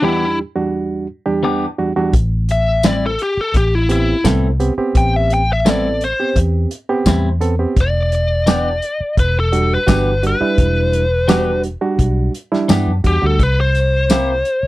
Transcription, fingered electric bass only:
2.13 3.16 A1 medium
3.37 muted fingered electric bass stroke soft
3.54 4.13 A1 medium
4.24 4.69 C2 medium
4.78 muted fingered electric bass stroke soft
4.95 6.12 A1 medium
6.36 6.65 E2 medium
7.06 7.65 E2 medium
7.76 8.79 E1 loud
9.00 muted fingered electric bass stroke soft
9.17 9.76 E1 medium
9.88 10.32 G1 medium
10.41 muted fingered electric bass stroke soft
10.58 11.75 E1 medium
11.98 12.28 B1 medium
12.70 12.86 G2 medium
12.87 13.03 F#2 medium
13.04 13.21 E2 medium
13.23 13.38 D2 medium
13.39 14.42 C2 medium
14.63 muted fingered electric bass stroke soft

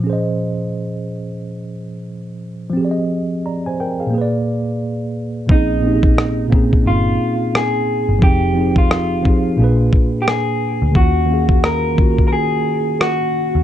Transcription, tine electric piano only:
0.00 2.70 A#2 medium
0.00 2.68 F3 medium
0.00 2.73 C#4 medium
0.07 2.74 G#4 medium
0.07 2.76 C5 medium
0.13 2.77 D#5 medium
2.70 4.07 F3 medium
2.70 4.09 C4 medium
2.77 3.44 G4 medium
2.77 3.46 G#4 medium
2.85 2.89 D5 medium
2.91 3.51 D#5 medium
3.46 3.65 D5 soft
3.46 3.65 A#5 medium
3.66 3.79 C5 soft
3.66 3.79 G#5 medium
3.80 3.99 A#4 medium
3.80 3.99 G5 medium
4.00 4.13 G#4 medium
4.00 4.32 F5 medium
4.06 5.43 A#2 medium
4.06 5.46 A#3 medium
4.14 5.47 G#4 medium
4.18 5.49 B4 medium
4.18 5.51 D5 medium
5.46 5.79 A#2 medium
5.46 5.80 A#3 medium
5.46 5.80 C4 medium
5.51 5.81 C#4 medium
5.51 5.82 D#4 medium
5.51 5.82 G#4 medium
5.81 6.44 A#2 medium
5.81 6.44 A#3 medium
5.81 6.45 C4 medium
5.85 6.46 C#4 medium
5.85 6.47 D#4 medium
5.85 5.94 G4 medium
5.95 6.51 G#4 medium
6.48 7.72 A#2 medium
6.48 7.73 A#3 medium
6.48 7.74 C4 medium
6.53 7.75 C#4 medium
6.53 7.76 D#4 medium
6.53 7.76 G#4 medium
8.19 8.51 F3 medium
8.19 8.52 C4 medium
8.23 8.53 D#4 medium
8.23 8.54 G4 medium
8.23 8.55 G#4 medium
8.53 9.16 F3 medium
8.53 9.17 C4 medium
8.53 9.18 D#4 medium
8.59 9.19 G4 medium
8.59 9.20 G#4 medium
9.22 9.57 F3 medium
9.22 9.58 C4 medium
9.22 9.59 D#4 medium
9.28 9.60 G4 medium
9.28 9.61 G#4 medium
9.56 10.80 A#2 medium
9.56 10.81 A#3 medium
9.56 10.82 D4 medium
9.62 10.83 G#4 medium
9.62 10.84 B4 medium
10.92 11.24 D#3 medium
10.92 11.25 A#3 medium
10.92 11.26 C#4 medium
10.98 11.27 F4 medium
10.98 11.28 F#4 medium
11.26 11.89 D#3 medium
11.26 11.90 A#3 medium
11.26 11.91 C#4 medium
11.32 11.93 G#4 medium
11.32 11.92 F5 medium
11.95 13.18 D#3 medium
11.95 13.19 A#3 medium
11.99 13.20 C#4 medium
11.99 13.21 F4 medium
11.99 13.22 F#4 medium

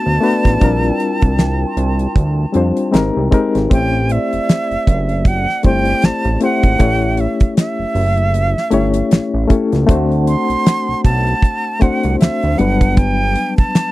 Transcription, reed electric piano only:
0.00 0.16 A3 medium
0.00 0.17 B3 medium
0.00 0.17 D4 medium
0.00 0.18 F#4 medium
0.00 0.18 B4 medium
0.20 0.58 A3 medium
0.20 0.58 B3 medium
0.20 0.58 D4 medium
0.20 0.59 F#4 medium
0.20 0.59 B4 medium
0.60 2.04 G3 medium
0.60 2.04 C4 medium
0.60 2.04 D4 medium
0.60 2.05 F4 medium
0.60 2.05 A#4 loud
2.53 2.93 G3 medium
2.53 2.91 C4 medium
2.53 2.94 D4 medium
2.53 2.94 F4 medium
2.53 2.95 C5 medium
2.91 3.28 G#3 medium
2.91 3.29 C4 medium
2.91 3.29 D#4 medium
2.91 3.30 G4 medium
2.91 3.30 A#4 loud
2.91 3.67 A#5 medium
3.31 3.67 G#3 medium
3.31 3.68 C4 medium
3.31 3.68 D#4 medium
3.31 3.68 G4 medium
3.31 3.69 A#4 medium
3.69 5.13 A3 medium
3.69 5.13 C4 medium
3.69 5.14 E4 medium
3.69 5.14 G4 medium
3.69 5.14 C5 medium
5.63 6.35 A3 medium
5.63 6.35 C4 medium
5.63 6.36 E4 medium
5.63 6.36 G4 medium
5.63 6.36 C5 medium
6.40 6.76 A3 medium
6.40 6.77 C4 medium
6.40 6.77 E4 medium
6.40 6.78 G4 medium
6.40 6.78 C5 medium
6.79 8.22 A3 medium
6.79 8.22 C#4 medium
6.79 8.22 E4 medium
6.79 8.23 G4 medium
6.79 8.23 C#5 medium
8.71 9.43 A3 medium
8.71 9.43 C#4 medium
8.71 9.44 E4 medium
8.71 9.44 G4 medium
8.71 9.45 C#5 loud
9.48 9.85 A3 medium
9.48 9.85 C#4 medium
9.48 9.85 E4 medium
9.48 9.86 G4 medium
9.48 9.86 A4 medium
9.86 11.30 A3 medium
9.86 11.30 C4 medium
9.86 11.31 D4 medium
9.86 11.32 F#4 medium
9.86 11.32 C5 loud
11.80 12.52 A3 medium
11.80 12.53 C4 medium
11.80 12.53 D4 medium
11.80 12.53 F#4 medium
11.80 12.54 C5 medium
12.57 13.92 F#3 medium
12.57 13.92 G3 medium
12.57 13.92 B3 medium
12.57 13.92 D4 medium
12.57 13.92 B4 medium

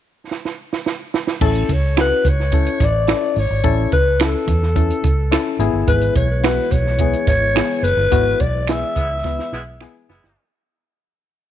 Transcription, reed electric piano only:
1.41 1.72 C#4 medium
1.41 1.72 E4 medium
1.41 1.72 A4 medium
1.97 2.28 C#4 medium
1.97 2.28 E4 medium
1.97 2.28 F#4 medium
2.53 2.84 C#4 medium
2.53 2.84 E4 medium
2.53 2.84 A4 medium
3.08 3.39 C#4 medium
3.08 3.39 E4 medium
3.08 3.39 A4 medium
3.64 3.95 C#4 medium
3.64 3.95 E4 medium
3.64 3.95 A4 medium
4.20 4.51 C#4 medium
4.20 4.51 E4 medium
4.20 4.51 A4 medium
4.75 5.06 C#4 medium
4.75 5.07 E4 medium
4.75 5.07 A4 medium
5.31 5.60 C#4 medium
5.31 5.59 E4 medium
5.31 5.60 A4 medium
5.60 6.27 B3 medium
5.60 6.27 E4 medium
5.60 6.27 G#4 medium
6.43 6.74 B3 medium
6.43 6.75 E4 medium
6.43 6.75 F#4 medium
7.00 7.31 B3 medium
7.00 7.31 E4 medium
7.00 7.31 G#4 medium
7.55 7.87 B3 medium
7.55 7.87 E4 medium
7.55 7.87 G#4 medium
8.12 8.43 B3 medium
8.12 8.43 E4 medium
8.12 8.43 F#4 medium
8.69 9.00 B3 medium
8.69 9.00 E4 medium
8.69 9.00 G#4 medium
9.25 9.56 B3 medium
9.25 9.56 E4 medium
9.25 9.56 B4 medium
9.81 10.12 B3 medium
9.81 10.12 E4 medium
9.81 10.12 G#4 medium

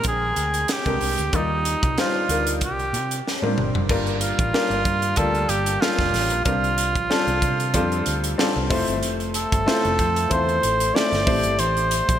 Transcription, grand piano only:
0.00 0.86 G#3 medium
0.00 0.86 C4 medium
0.00 0.86 D4 medium
0.00 0.87 G4 medium
0.00 0.87 A#4 medium
0.00 1.34 C5 loud
0.00 0.41 G5 medium
0.86 1.15 G#3 medium
0.86 1.15 C4 medium
0.86 1.15 D4 medium
0.86 1.15 G4 medium
0.86 1.15 A#4 medium
1.33 1.72 G3 medium
1.33 1.72 D#4 medium
1.33 1.73 F4 medium
1.33 1.73 A#4 medium
1.33 1.72 D5 medium
1.98 2.18 G3 medium
1.98 2.18 D4 medium
1.98 2.18 D#4 medium
1.98 2.18 F4 medium
1.98 2.19 C5 medium
2.30 2.62 G3 medium
2.30 2.62 D4 medium
2.30 2.62 D#4 medium
2.30 2.62 F4 medium
2.30 2.62 A#4 medium
3.42 3.71 G3 medium
3.42 3.71 C4 medium
3.42 3.72 D4 medium
3.42 3.72 F4 medium
3.42 3.72 A#4 medium
3.89 4.29 G3 loud
3.89 4.29 A#3 medium
3.89 4.29 D4 medium
3.89 4.29 F4 medium
3.89 4.29 A#4 loud
4.54 4.93 G3 loud
4.54 4.93 A#3 medium
4.54 4.93 D4 medium
4.54 4.93 F4 medium
4.54 4.93 A#4 loud
5.17 5.57 G3 medium
5.17 5.57 A#3 medium
5.17 5.57 D4 medium
5.17 5.57 F4 medium
5.17 5.57 G4 medium
5.81 6.21 G3 medium
5.81 6.21 A#3 medium
5.81 6.21 D4 medium
5.81 6.21 F4 medium
5.81 6.22 A4 medium
6.45 6.85 G3 medium
6.45 6.85 C4 medium
6.45 6.85 D4 medium
6.45 6.85 F4 medium
6.45 6.85 A#4 medium
7.10 7.49 G3 medium
7.10 7.49 C4 medium
7.10 7.50 D4 medium
7.10 7.50 F4 medium
7.10 7.50 A4 loud
7.74 8.13 G3 medium
7.74 8.14 C4 medium
7.74 8.14 D4 medium
7.74 8.14 F4 medium
7.74 8.14 A4 loud
8.38 8.70 G3 medium
8.38 8.69 C4 medium
8.38 8.71 D4 medium
8.38 8.70 F4 medium
8.38 8.71 A4 medium
8.70 9.48 A3 loud
8.70 9.49 C4 medium
8.70 9.49 E4 medium
8.70 9.49 F4 medium
8.70 9.49 C5 loud
9.66 10.06 A3 loud
9.66 10.06 C4 medium
9.66 10.06 E4 medium
9.66 10.06 F4 medium
9.66 10.07 C5 loud
10.30 10.70 A3 medium
10.30 10.70 C4 medium
10.30 10.70 E4 medium
10.30 10.70 F4 medium
10.30 10.70 C5 loud
10.94 11.24 A3 medium
10.94 11.25 C4 medium
10.94 11.25 E4 medium
10.94 11.27 F4 medium
10.94 11.25 C5 medium
11.26 12.04 A3 medium
11.26 12.05 C4 medium
11.26 12.05 E4 medium
11.26 12.05 G4 medium
11.26 12.05 C5 medium

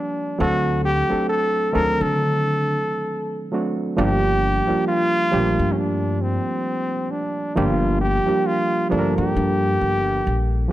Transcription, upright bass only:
0.40 1.01 D2 loud
1.12 muted upright bass stroke soft
1.75 1.97 D2 medium
2.01 2.78 D3 loud
3.98 4.59 G1 loud
4.70 muted upright bass stroke soft
5.33 5.55 A#1 medium
5.59 6.36 G2 loud
7.57 8.18 G1 loud
8.29 muted upright bass stroke soft
8.92 9.14 G1 medium
9.18 9.33 G2 loud
9.36 9.74 G2 loud
9.81 10.19 G1 loud
10.27 10.64 A#1 loud

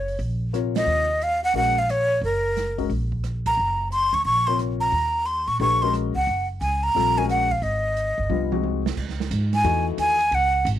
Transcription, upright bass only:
0.00 0.16 F#1 medium
0.19 0.83 A#1 medium
0.86 1.51 D#2 medium
1.54 2.18 A#1 medium
2.21 2.86 F#1 medium
2.90 3.54 A#1 medium
3.57 4.09 F#1 medium
4.13 4.24 D2 medium
4.25 4.89 A#1 medium
4.92 5.44 D#2 medium
5.48 5.59 A#2 medium
5.60 6.12 A#1 medium
6.15 6.26 C#2 medium
6.27 6.59 F#1 medium
6.61 6.92 C#2 medium
6.95 7.59 A#1 medium
7.62 8.14 G#1 medium
8.18 8.29 G1 medium
8.30 8.94 C2 medium
8.97 9.30 C#2 medium
9.31 9.63 G#2 medium
9.64 9.97 E2 medium
9.98 10.31 D#2 medium
10.31 10.65 C#2 medium
10.65 10.79 G#1 loud

